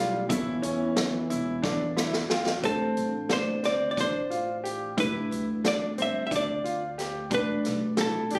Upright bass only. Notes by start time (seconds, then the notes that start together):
Already playing: B1
0.31 E1
0.64 E2
0.98 E2
1.32 E1
1.64 E2
2.64 D2
2.97 A1
3.31 A1
3.65 D2
3.98 A1
4.98 G1
5.31 D2
5.64 D2
5.98 G1
6.31 D2
7.31 E1
7.65 B1
7.99 B1
8.33 E1